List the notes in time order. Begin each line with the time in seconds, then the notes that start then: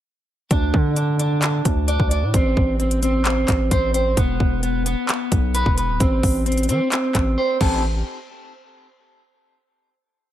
0.51 D2 D4, kick, closed hi-hat
0.74 D3, kick
0.96 D4, closed hi-hat
1.19 D4, closed hi-hat
1.42 D4, clap, closed hi-hat
1.65 D2, kick, closed hi-hat
1.88 D5, closed hi-hat
2.00 D2, kick
2.11 D5, closed hi-hat
2.23 A2
2.34 A1 C4, kick, closed hi-hat
2.57 A1, kick
2.80 C4, closed hi-hat
2.91 closed hi-hat
3.03 C4, closed hi-hat
3.25 C4, clap, closed hi-hat
3.48 A1, kick, clap, closed hi-hat
3.71 A1 C5, kick, closed hi-hat
3.94 C5, closed hi-hat
4.17 E1 B3, kick, closed hi-hat
4.40 E1, kick
4.63 B3, closed hi-hat
4.86 B3, closed hi-hat
5.09 B3, clap, closed hi-hat
5.32 B1, kick, closed hi-hat
5.55 B4, closed hi-hat
5.66 E1, kick
5.77 B4, closed hi-hat
5.89 D1
6.00 A1 C4, kick, closed hi-hat
6.23 A1, kick, open hi-hat
6.46 C4, closed hi-hat
6.52 closed hi-hat
6.58 closed hi-hat
6.63 closed hi-hat
6.69 E3 C4, closed hi-hat
6.92 C4, clap, closed hi-hat
7.15 A1, kick, clap, closed hi-hat
7.38 C5
7.61 A1 C4 G4 A4, kick, crash